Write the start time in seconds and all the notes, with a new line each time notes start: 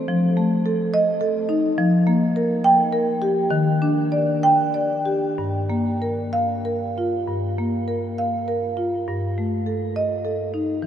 0.08 F3
0.37 A3
0.66 A4
0.94 D#5
1.21 A4
1.49 D#4
1.78 F3
2.07 A#3
2.36 A#4
2.64 G5
2.93 A#4
3.22 G4
3.51 D#3
3.82 D4
4.12 D5
4.43 G5
4.74 D5
5.06 G4
5.38 G2
5.70 A#3
6.02 A#4
6.33 F5
6.65 A#4
6.98 F4
7.28 G2
7.58 A#3
7.88 A#4
8.18 F5
8.48 A#4
8.77 F4
9.08 G2
9.38 A3
9.66 A4
9.96 D#5
10.25 A4
10.54 D#4
10.82 E3